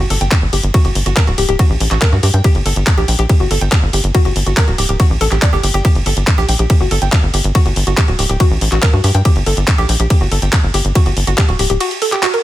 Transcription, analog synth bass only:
0.10 0.18 G1 loud
0.21 0.29 G1 loud
0.42 0.50 G1 medium
0.53 0.60 G1 loud
0.63 0.71 G1 medium
0.85 0.92 G1 medium
0.95 1.03 G1 loud
1.06 1.14 G1 medium
1.27 1.35 D1 medium
1.38 1.46 D1 loud
1.49 1.56 D1 medium
1.70 1.78 A1 medium
1.81 1.88 A1 loud
1.91 1.99 A1 loud
2.12 2.20 G2 medium
2.23 2.31 G2 loud
2.34 2.41 G2 medium
2.55 2.63 G1 medium
2.66 2.73 G1 loud
2.76 2.84 G1 loud
2.98 3.05 A#1 medium
3.08 3.16 A#1 loud
3.19 3.26 A#1 loud
3.40 3.48 G1 medium
3.51 3.58 G1 loud
3.61 3.69 G1 medium
3.83 3.90 G1 medium
3.93 4.01 G1 loud
4.04 4.12 G1 medium
4.25 4.33 G1 medium
4.36 4.43 G1 loud
4.46 4.54 G1 medium
4.68 4.75 D1 medium
4.78 4.86 D1 loud
4.89 4.97 D1 loud
5.10 5.18 A1 medium
5.21 5.29 A1 loud
5.32 5.39 A1 loud
5.53 5.61 G1 medium
5.63 5.71 G1 loud
5.74 5.82 G1 medium
5.95 6.03 G1 medium
6.06 6.14 G1 loud
6.17 6.24 G1 medium
6.38 6.46 A#1 medium
6.49 6.56 A#1 loud
6.59 6.67 A#1 loud
6.81 6.88 G1 medium
6.91 6.99 G1 loud
7.02 7.09 G1 medium
7.23 7.31 G1 medium
7.34 7.41 G1 loud
7.44 7.52 G1 loud
7.66 7.73 G1 medium
7.76 7.84 G1 loud
7.87 7.95 G1 medium
8.08 8.16 D1 medium
8.19 8.26 D1 loud
8.29 8.37 D1 medium
8.51 8.58 A1 medium
8.61 8.69 A1 loud
8.72 8.80 A1 loud
8.93 9.01 G2 medium
9.04 9.12 G2 loud
9.15 9.22 G2 medium
9.36 9.43 G1 medium
9.46 9.54 G1 loud
9.57 9.65 G1 medium
9.78 9.86 A#1 medium
9.89 9.97 A#1 loud
10.00 10.07 A#1 loud
10.21 10.29 G1 medium
10.32 10.39 G1 loud
10.42 10.50 G1 loud
10.63 10.71 G1 medium
10.74 10.82 G1 loud
10.85 10.92 G1 loud
11.06 11.14 G1 medium
11.17 11.24 G1 loud
11.27 11.35 G1 medium
11.49 11.56 D1 medium
11.59 11.67 D1 loud
11.70 11.78 D1 medium

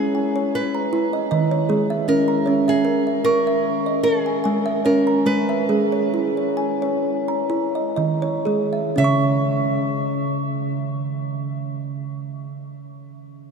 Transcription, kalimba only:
0.00 0.64 G#3 medium
0.00 0.15 E4 medium
0.00 0.15 C#5 soft
0.15 0.74 G#5 soft
0.36 0.75 C#5 medium
0.75 1.31 A#5 soft
0.93 1.31 E4 medium
1.13 1.30 D#5 soft
1.31 1.63 D#3 medium
1.31 1.91 D#5 medium
1.51 1.90 C#5 medium
1.69 2.01 G#3 medium
1.69 2.29 G#4 soft
1.90 2.29 E5 medium
2.08 2.46 C#4 medium
2.28 2.85 A#5 soft
2.46 3.75 C#4 medium
2.46 3.06 C#5 medium
2.68 3.06 E5 soft
2.85 3.25 A#4 medium
3.07 3.46 E5 soft
3.26 3.86 C#6 soft
3.47 3.87 E5 medium
3.86 4.45 D#5 soft
4.04 4.45 A#4 medium
4.26 4.43 G#5 soft
4.44 4.79 G#3 medium
4.44 5.08 G#5 medium
4.66 5.08 E5 medium
4.85 5.20 C#4 medium
4.85 5.50 C#5 soft
5.07 5.50 A#5 soft
5.26 5.68 G#3 medium
5.49 6.13 E5 soft
5.69 7.16 G#3 medium
5.69 6.37 G#4 medium
5.92 6.36 C#5 soft
6.14 6.58 E4 medium
6.37 6.81 C#5 soft
6.57 7.28 G#5 soft
6.82 7.28 C#5 medium
7.28 7.98 A#5 soft
7.50 7.98 E4 medium
7.75 7.95 D#5 soft
7.96 8.38 D#3 medium
7.96 8.73 D#5 medium
8.22 8.73 C#5 medium
8.45 8.88 G#3 medium
8.45 9.25 G#4 medium
8.73 9.25 E5 soft
8.96 12.13 C#3 medium
8.96 12.16 C#4 medium
8.96 12.20 C#5 medium
9.04 12.24 C#6 medium

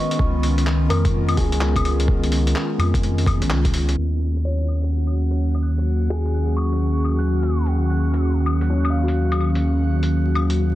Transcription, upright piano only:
0.00 0.42 B4 medium
0.00 3.99 C#5 medium
0.00 0.58 D#5 medium
0.89 1.60 A#4 medium
1.37 2.08 G#4 medium
4.45 5.15 C#5 medium
6.10 6.80 G#4 medium
8.70 9.40 C#4 soft
8.90 9.56 F5 medium
9.03 9.69 F#4 soft

